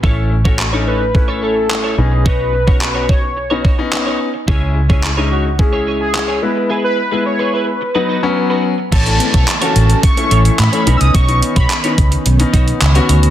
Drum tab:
CC |----------------|----------------|----------------|----------------|
HH |----------------|----------------|----------------|----------------|
CP |----x-------x---|----x-------x---|----x-------x---|----------------|
BD |o--o----o-------|o--o--o---o-----|o--o----o-------|----------------|

CC |x---------------|----------------|
HH |xxxxxxxxxxxxxxxx|xxxxxxxxxxxxxxxx|
CP |----x-------x---|----x-------x---|
BD |o--o----o-------|o--o--o---o-----|